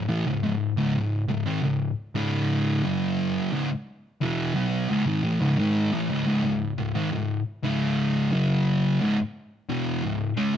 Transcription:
0.09 A2 E3
0.27 C#2 G#2
0.44 C#2 G#2
0.77 C#2 G#2
0.95 C#2 G#2
1.29 C#2 G#2
1.47 G#2 D#3
1.63 C#2 G#2
2.15 C#2 G#2 C#3
2.84 F#2 C#3 F#3
3.52 C#2 G#2
4.21 E2 B2 E3
4.55 B2 F#3 B3
4.90 C#2 G#2
5.06 G#2 D#3
5.23 A2 E3
5.41 C#2 G#2
5.58 G#2 D#3 G#3
5.93 A2 E3
6.10 C#2 G#2
6.26 C#2 G#2
6.44 C#2 G#2
6.78 C#2 G#2
6.95 G#2 D#3
7.12 C#2 G#2
7.63 C#2 G#2 C#3
8.32 F#2 C#3 F#3
9.01 C#2 G#2
9.69 E2 B2 E3
10.03 C#2 G#2
10.37 C#3 G#3

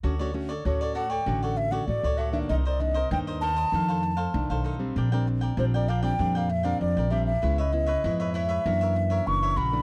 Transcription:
0.03 D2 D3 A3 C#4 F#4 A4 C#5 D5
0.19 A3 C#4 F#4 A4 C#5 D5
0.34 A3 C#4 F#4, muted cavaquinho stroke
0.49 A4 C#5 D5
0.65 D2 A2 A3 C#4 F#4 A4 C#5 D5
0.81 A4 C#5 D5
0.95 F#4 A4 C#5 D5 F#5
1.10 A4 C#5 D5 G5
1.26 A1 D3 A3 C#4 F#4 A4 C#5 D5
1.43 A4 C#5 D5 F#5
1.57 E5, muted cavaquinho stroke
1.71 A3 C#4 F#4 A4 C#5 D5 F#5
1.88 A1 A2 A3 F#4 D5
2.03 C#2 A4 C#5 D5
2.18 F#4 A4 C#5 D5 E5
2.32 D#3 A#3 D4 E5
2.49 C2 C3 D#4 A#4 C5 D#5
2.65 A#4 C5 D5 D#5
2.79 D#3 A#3 D4 D#5, muted cavaquinho stroke
2.94 A#4 C5 D#5
3.11 D#2 G2 D#3 A#3 D4 D#4 A#4 C5 D#5 G5
3.27 A#4 C5 D#5
3.41 D#4 A#4 C5 D#5 A5
3.56 A#4 C5 D#5
3.72 F2 D#3 A3 D4 D#4 A4 C5 F5
3.88 A4 C5 F5
4.03 muted cavaquinho stroke
4.17 A4 C5 F5
4.34 C2 D#3 A3 D4
4.50 B1 A4 C5 F5
4.64 D#4 A4 C5 F5
4.79 G3 C4 D4
4.96 A#1 A#2 D4 A#4 D5 G5
5.12 G3 C4 D4 A#4 D5 G5
5.27 muted cavaquinho stroke
5.41 A#4 D5 G5
5.57 A#1 F3 G3 C4 D4 A#4 C5 D5 G5
5.74 A#4 D5 G5
5.88 D4 A#4 D5 F5 G5
6.02 G3 C4 D4 A#4 D5 G5
6.19 F2 A#2 G3 C4 D4 A#4 D5 G5
6.35 A#4 D5 F5 G5
6.49 E5, muted cavaquinho stroke
6.63 G3 C4 D4 A#4 D5 F5 G5
6.81 F2 F3 D5
6.97 A#1 A#4 D5 G5
7.10 G3 C4 D4 A#4 D5 E5 G5
7.26 E5
7.42 C#2 C#3 G#3 B3 E4 B4 C#5 E5
7.58 B4 C#5 D#5 E5
7.72 G#3 B3 E4, muted cavaquinho stroke
7.87 B4 C#5 E5
8.04 F2 G#2 G#3 B3 E4 B4 C#5 E5
8.20 B4 C#5 E5
8.34 E4 B4 C#5 E5
8.49 B4 C#5 E5
8.66 F#2 E3 A#3 D4 F#4 A#4 C#5 E5
8.81 A#4 C#5 E5
8.96 muted cavaquinho stroke
9.10 A#4 C#5 E5
9.27 F#1 C#3 E3 A#3 D4 C#6
9.43 A#4 C#5 E5
9.56 A#1 F#4 A#4 C#5 E5 B5
9.72 E3 A3 D4

